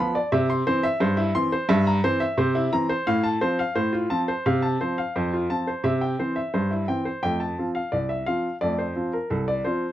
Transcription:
upright piano
Already playing: F3 B3 B5
0.15 D5
0.32 C3 E5
0.50 C6
0.67 E3 C4 C5
0.83 E5
1.00 G2 C5
1.17 E4
1.35 E3 C4 C6
1.52 C5
1.69 G2 E5
1.87 A#5
2.04 E3 C4 C5
2.20 E5
2.38 C3 C5
2.55 E4
2.73 E3 C4 A#5
2.89 C5
3.07 A2 F5
3.23 A5
3.41 F3 C4 C5
3.59 F5
3.75 A2 C5
3.93 F4
4.10 F3 C4 A5
4.28 C5
4.46 C3 F5
4.62 A5
4.81 F3 C4 C5
4.98 F5
5.16 F2 C5
5.33 F4
5.50 F3 C4 A5
5.67 C5
5.84 C3 E5
6.01 G5
6.19 E3 C4 C5
6.36 E5
6.54 G2 C5
6.71 E4
6.88 E3 C4 G5
7.05 C5
7.23 F2 A3 G5
7.40 A5
7.58 F3 C4 F4
7.75 F5
7.92 C2 D5
8.09 E5
8.26 F3 C4 F4 F5
8.61 F2 A3 D5
8.78 C5
8.96 F3 C4 F4
9.13 A#4
9.30 C2 A4
9.48 D5
9.65 F3 C4 F4 C5

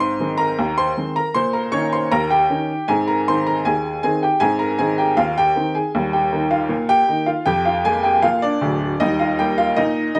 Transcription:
upright piano
Already playing: G#2 C4
0.00 C5 C6
0.20 D#3 G#3 C4
0.38 A#4 A#5
0.59 D#2
0.78 C5 C6
0.97 D#3 G#3 C4
1.16 A#4 A#5
1.34 A#2 C5 C6
1.53 A#4 A#5
1.72 D#3 C#4 D#4 C#5 C#6
1.93 C5 C6
2.12 D#2 A#4 A#5
2.30 G4 G5
2.50 D#3 C#4 D#4
2.88 G#2 C4 G#4 G#5
3.08 A#4 A#5
3.28 D#3 C4 D#4 C5 C6
3.47 A#4 A#5
3.65 D#2 G#4 G#5
4.03 D#3 C4 D#4 G#4 G#5
4.23 G4 G5
4.40 G#2 C4 G#4 G#5
4.59 A#4 A#5
4.79 D#3 C4 D#4 G#4 G#5
4.98 G4 G5
5.17 D#2 F4 F5
5.38 G4 G5
5.56 D#3 C4 D#4
5.75 G#4 G#5
5.95 D#2 G3
6.13 G4 G5
6.32 D#3 A#3 D#4
6.51 F4 F5
6.69 A#2
6.89 G4 G5
7.08 D#3 A#3 D#4
7.26 F4 F5
7.46 F2 G4 G5
7.65 F4 F5
7.85 G#3 A#3 G#4 G#5
8.03 G4 G5
8.22 A#2 F4 F5
8.42 D4 D5
8.61 D1 D2
9.00 D#2 G3 D#4 D#5
9.20 F4 F5
9.39 G3 A#3 G4 G5
9.58 F4 F5
9.76 A#2 D#4 D#5
10.15 G3 A#3 D#4 D#5

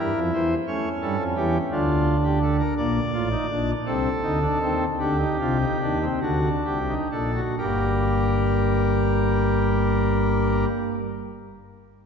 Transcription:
pipe organ
Already playing: E4
0.00 G2 G3 A#4
0.16 F2 F3
0.34 E2 E3 C5
0.67 A3 C#4 C#5
1.02 G2 G3 A4
1.19 F2 F3
1.36 E2 E3 G4
1.71 D2 D3 D4 F4
2.24 G4
2.42 A4
2.60 A#4
2.77 A#1 A#2 A#3 D5
3.13 A1 A2 F4
3.31 D#4
3.50 A#1 A#2 D4
3.86 C2 C3 C4 A4
4.23 D2 D3 D#4
4.42 D4
4.61 D#2 D#3 C4
5.00 D2 D3 D4 G4
5.20 D#4
5.40 C2 C3 F4
5.60 D#4
5.81 D#2 D#3 D4
6.01 C4
6.21 D2 D3 D4 F#4
6.66 C2 C3 G4
6.88 D#4
7.11 A#1 A#2 D4 A4
7.35 F#4
7.58 G1 G2 G3 A#3 G4 A#4

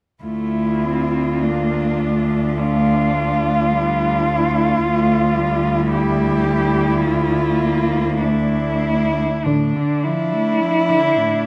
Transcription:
cello
0.23 D2 A3 E4 F4
0.84 C4
1.42 A#3 D4
2.00 A3
2.58 D4 F4
3.72 G3 D4
4.29 A3
4.85 D2 A3 F4
5.41 G3
5.94 E4 G4
7.02 A3 F4
7.61 A#3
8.20 A3 D4 E4
9.44 A2 D3 D4
9.76 D3
10.03 F3 E4
10.33 A3
10.61 F3
10.89 D3
11.17 A2

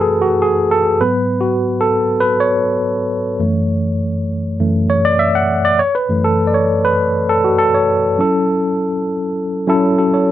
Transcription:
tine electric piano
Already playing: F#2 E3 A3 F#4 A4 B4
0.00 G#4
0.21 F#4
0.42 G#4
0.71 A4
1.00 G#2 F#3 B3 B4
1.41 F#4
1.81 A4
2.20 B4
2.40 C#5
3.39 F#2 E3 A3
4.59 F#2 E3 A3
4.90 C#5
5.05 D5
5.19 E5
5.35 F#5
5.65 D5
5.79 C#5
5.95 B4
6.08 F#2 E3 A3
6.24 A4
6.47 D5
6.54 C#5
6.85 B4
7.29 A4
7.44 F#4
7.58 A4
7.74 C#5
8.17 F#3 C#4 E4 A4
9.67 F#3 C#4 E4 A4
9.99 F#4 A4
10.14 A4 C#5

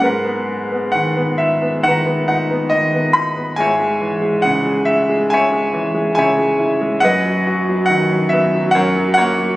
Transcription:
grand piano
0.00 G#2 A#4 B4 F#5
0.25 B3
0.72 B3
0.92 D#3 F#5
1.17 B3
1.38 E5
1.62 B3
1.83 D#3 F#5
1.88 B4 A#5
2.06 B3
2.28 D#4 F#5
2.51 B3
2.70 D#3 D#5
2.94 B3
3.13 D#4 B5
3.36 B3
3.56 G#2 C#5 G#5
3.61 E5
3.80 G#3
4.01 E3
4.21 G#3
4.42 C#3 F#5
4.65 G#3
4.85 E5
5.09 G#3
5.30 C#5 E5 G#5
5.52 G#3
5.73 E3
5.94 G#3
6.15 C#3 C#5 E5 G#5
6.38 G#3
6.59 E4
6.81 G#3
7.00 F#2 D#5 F#5
7.04 B4
7.26 F#3
7.47 F#4
7.69 F#3
7.86 D#3 F#5
8.11 F#3
8.29 B3 E5
8.55 F#3
8.71 A#4 C#5 F#5
8.75 F#2
8.96 F#3
9.14 A#4 C#5 F#5
9.18 A#3
9.38 F#3

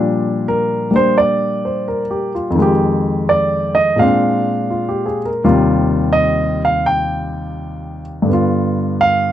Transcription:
grand piano
Already playing: A#2 F3 G3 D4
0.48 A#4
0.91 G3 A#3 D4
0.96 C5
1.18 D5
1.65 C5
1.88 A#4
2.11 G4
2.35 F4
2.50 F2
2.55 D#3 G#3
2.62 G4
3.29 D5
3.75 D#5
3.96 A#2 G#3 C4 F5
4.01 D4
4.70 F4
4.89 G4
5.06 G#4
5.25 A#4
5.44 D#2 C3 G3 F4
6.13 D#5
6.65 F5
6.86 G5
8.22 G2 D3
8.29 B3 F4
9.01 F5

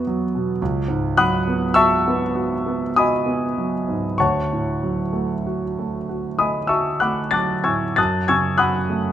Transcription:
grand piano
Already playing: E2 B3 F#4
0.07 F#3
0.35 B2
0.62 C#2
0.88 G#2
1.17 F#3 F#5 B5 D#6 F#6
1.47 B3
1.74 F#4 E5 A5 C#6 E6
2.08 B3
2.35 F#4
2.66 B3
2.96 F#4 D#5 G#5 B5 D#6
3.26 B3
3.58 F#3
3.88 G#2
4.18 D2 C#5 F#5 A5 C#6
4.52 A2
4.83 F#3
5.13 A3
5.47 F#4
5.79 A3
6.09 F#4
6.39 A3 D#5 G#5 B5 D#6
6.67 F#4 E5 A5 C#6 E6
7.00 A3 F#5 B5 D6 F#6
7.31 F#3 A5 D6 F#6 A6
7.64 A2 G#5 C#6 E6 G#6
7.96 F#2 A5 D#6 F#6 A6
8.28 C#3 G#5 C#6 E6 G#6
8.58 F#3 F#5 B5 D#6 F#6
8.90 A3

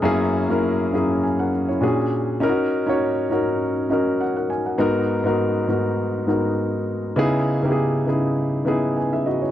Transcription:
grand piano
Already playing: B3
0.02 F#2 A#3 C#4 E4 G#4
0.48 F#2 A#3 C#4 E4 A#4
0.92 F#2 A#3 C#4 E4 G#4
1.24 G#5
1.39 A#4 F#5
1.69 E4 C#5
1.81 A#2 C#4 D4 F#4 G#4
2.40 C#4 D#4 E4 A#4
2.49 F#4
2.86 C#4 D#4 F#4 C#5
3.30 C#4 D#4 F#4 A#4
3.90 C#4 D#4 F#4 A#4 D#5
4.21 F#5
4.36 A#4 F#5
4.50 G#5
4.66 A#4 F#5
4.78 G#2 B3 D#4 F#4 A#4
5.24 G#2 B3 D#4 F#4 A#4
5.67 G#2 B3 D#4 F#4 A#4
6.27 G#2 B3 D#4 F#4 A#4
7.16 C#3 B3 D#4 E4 G#4
7.62 C#3 B3 D#4 E4 G4
7.72 G#4
8.06 C#3 B3 D#4 E4 G#4
8.65 C#3 B3 D#4 E4 G#4
8.97 B4 G#5
9.13 G#4 E5
9.26 F#4 D#5
9.42 E4 C#5

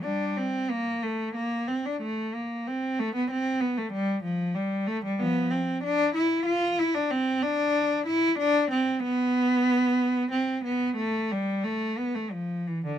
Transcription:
cello
0.03 G3 D4
0.37 C4
0.70 A#3
1.03 A3
1.35 A#3
1.68 C4
1.86 D4
2.02 A3
2.34 A#3
2.67 C4
2.99 A3
3.15 B3
3.31 C4
3.61 B3
3.78 A3
3.93 G3
4.24 F3
4.55 G3
4.87 A3
5.04 G3
5.19 F3 B3
5.51 C4
5.84 D4
6.15 E4
6.46 F4
6.79 E4
6.95 D4
7.11 C4
7.42 D4
8.07 E4
8.39 D4
8.71 C4
9.03 B3
10.31 C4
10.65 B3
10.97 A3
11.31 G3
11.64 A3
11.99 B3
12.15 A3
12.32 F3
12.67 E3
12.86 D3

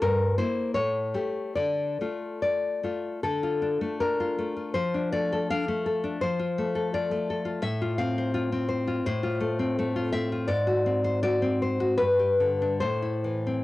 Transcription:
nylon-string guitar
0.02 G2 A#4
0.38 A#3 E4 C5
0.74 A2 C#5
1.14 A3 G4
1.56 D3 D5
2.01 A3 F4
2.42 D5
2.83 A3 F4
3.23 D3 A4
3.43 F4
3.62 D4
3.81 A3
4.00 D4 A#4
4.20 F4
4.39 A3
4.57 F4
4.74 F3 C5
4.94 D4
5.13 A3 D5
5.33 A4
5.51 D4 F5
5.68 A3
5.86 A4
6.04 D4
6.21 F3 C5
6.39 F4
6.58 A3
6.75 A4
6.94 F4 D5
7.11 A3
7.30 A4
7.45 F4
7.62 A2 E5
7.81 F4
7.98 C4 F5
8.18 C5
8.34 F4
8.52 C4
8.69 C5
8.88 F4
9.06 A2 C5
9.23 F4
9.41 A3
9.59 C4
9.79 A3
9.96 F4
10.13 C4 E5
10.32 F4
10.48 G#2 D5
10.67 F#4
10.86 C4
11.04 C5
11.23 F#4 D5
11.42 C4
11.62 C5
11.80 F#4
11.98 G2 B4
12.19 G4
12.40 D3
12.62 D4
12.80 A2 C5
13.02 E4
13.24 E3
13.47 C4

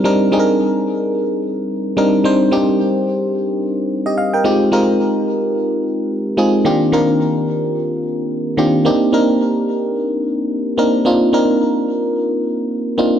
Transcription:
fm electric piano
0.04 G3 C4 D4 D#4 A#4
0.32 G3 C4 D4 D#4 G#4
0.39 A#4
1.97 G3 C4 D4 D#4 A#4
2.24 G3 C4 D4 D#4 C5
2.51 G3 C4 D4 D#4 G4
4.06 G4 D#5
4.18 F5
4.34 A#4 G5
4.44 G#3 C4 D#4 F4 G4
4.72 G#3 C4 D#4 F4 A#4
6.37 G#3 C4 D#4 F4 G#4
6.65 D#3 A#3 C4 D4 F4 G4
6.92 D#3 A#3 C4 D4 F4 A#4
8.57 D#3 A#3 C4 D4 F4 G4
8.85 A#3 C4 D4 D#4 G4
9.13 A#3 C4 D4 D#4 A#4
10.78 A#3 C4 D4 D#4 A#4
11.05 A#3 C4 D4 D#4 F4
11.33 A#3 C4 D4 D#4 A#4
12.98 A#3 C4 D4 D#4 F4

